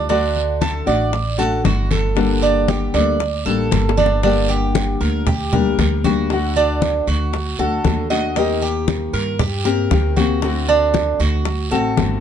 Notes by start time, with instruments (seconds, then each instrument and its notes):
Already playing: upright bass D2
0.09 nylon-string guitar D3 A3 D4 F#4, cuban tres D4, high bongo, high conga, long guiro
0.36 high conga
0.61 cuban tres A4, high bongo, high conga, short guiro
0.86 upright bass A1, nylon-string guitar A3 D4 F#4, cuban tres D5, high conga, short guiro
1.13 muted nylon-string guitar stroke, high bongo, high conga, long guiro
1.38 nylon-string guitar A3 D4 F#4, cuban tres A4, high conga
1.64 upright bass G1, nylon-string guitar D3 A3 D4 F#4, cuban tres F#4, high bongo, low bongo, high conga, short guiro
1.91 cuban tres A4, high conga, short guiro
2.15 nylon-string guitar D3 G3 A#3 D4 A4, high bongo, high conga, long guiro
2.42 cuban tres D4, high conga
2.68 cuban tres G4, high bongo, high conga, short guiro
2.94 upright bass D2, nylon-string guitar G3 A#3 D4 A4, cuban tres D5, high bongo, high conga, short guiro
3.20 muted nylon-string guitar stroke, high bongo, high conga, long guiro
3.45 upright bass A1, nylon-string guitar G3 A#3 D4 A4, cuban tres A4, high bongo, high conga
3.71 upright bass G1, nylon-string guitar G3 A#3 D4 A4, high bongo, high conga, short guiro
3.89 high bongo
3.97 cuban tres D4, high conga, short guiro
4.06 low bongo
4.23 nylon-string guitar D3 G3 A#3 D4 G4, cuban tres D4, high bongo, high conga, long guiro
4.49 cuban tres G4, high conga
4.75 high bongo, high conga, short guiro
5.01 upright bass D2, cuban tres A#4, high conga, short guiro
5.27 cuban tres G4, muted nylon-string guitar stroke, high bongo, high conga, low conga, long guiro
5.53 nylon-string guitar G3 A#3 D4 G4, cuban tres A#4, high conga, low conga
5.78 upright bass D2, nylon-string guitar G3 A#3 D4 G4, high bongo, low bongo, high conga, short guiro
6.04 nylon-string guitar G3 A#3 D4 G4, cuban tres F#4, high conga, short guiro
6.30 nylon-string guitar D3 A3 D4 F#4, high bongo, high conga, long guiro
6.56 cuban tres D4, high bongo, high conga
6.82 high bongo, high conga, short guiro
7.07 upright bass D2, cuban tres F#4, high bongo, high conga, short guiro
7.33 muted nylon-string guitar stroke, high bongo, high conga, long guiro
7.59 upright bass D2, nylon-string guitar A3 D4 F#4, cuban tres A4, high bongo, high conga
7.84 upright bass D#2, nylon-string guitar D3 A3 D4 F#4, high bongo, low bongo, high conga, short guiro
8.10 nylon-string guitar A3 D4 F#4, cuban tres D#5, short guiro
8.36 nylon-string guitar D#3 A#3 C4 G4, cuban tres D#4, high bongo, high conga, long guiro
8.62 cuban tres G4, high conga
8.88 high bongo, high conga, short guiro
9.13 upright bass G2, cuban tres A#4, high conga, short guiro
9.39 cuban tres G4, muted nylon-string guitar stroke, high bongo, high conga, low conga, long guiro
9.65 nylon-string guitar A#3 C4 G4, cuban tres A#4, high conga
9.90 upright bass D2, nylon-string guitar D#3 A#3 C4 G4, high bongo, low bongo, high conga, short guiro
10.16 nylon-string guitar A#3 C4 G4, cuban tres F#4, high conga, short guiro
10.42 nylon-string guitar D3 A3 C4 F#4, high bongo, high conga, long guiro
10.68 cuban tres D4, high bongo, high conga
10.94 high bongo, high conga, short guiro
11.20 upright bass D2, cuban tres F#4, high bongo, high conga, short guiro
11.45 muted nylon-string guitar stroke, high bongo, high conga, long guiro
11.71 upright bass A1, nylon-string guitar A3 C4 F#4, cuban tres A4, high bongo, high conga
11.97 upright bass G1, nylon-string guitar D3 A3 C4 F#4, high bongo, low bongo, high conga, short guiro